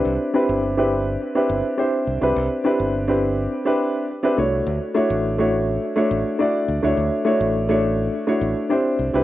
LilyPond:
<<
  \new Staff \with { instrumentName = "Grand piano" } { \time 4/4 \key d \major \tempo 4 = 104 <c' d' e' g' b'>8 <c' d' e' g' b'>8. <c' d' e' g' b'>4 <c' d' e' g' b'>8. <c' d' e' g' c''>8. <c' d' e' g' b'>16~ | <c' d' e' g' b'>8 <c' d' e' g' b'>8. <c' d' e' g' b'>4 <c' d' e' g' b'>8. r16 <c' d' e' g' b'>16 <a d' e' fis' cis''>8~ | <a d' e' fis' cis''>8 <a d' e' fis' cis''>8. <a d' e' fis' cis''>4 <a d' e' fis' cis''>8. <a d' e' fis' d''>8. <a d' e' fis' cis''>16~ | <a d' e' fis' cis''>8 <a d' e' fis' cis''>8. <a d' e' fis' cis''>4 <a d' e' fis' cis''>8. <c' d' e' g' c''>8. <c' d' e' g' b'>16 | }
  \new Staff \with { instrumentName = "Fingered electric bass" } { \clef bass \time 4/4 \key d \major c,16 r8 g,,4~ g,,16 r8 g,,16 r8. c,16 c,16 | c,16 r8 g,,4~ g,,16 r4. c,8 | d,16 r8 a,,4~ a,,16 r8 a,,16 r8. d,16 d,16 | d,16 r8 a,,4~ a,,16 r8 a,,16 r8. c,16 c,16 | }
>>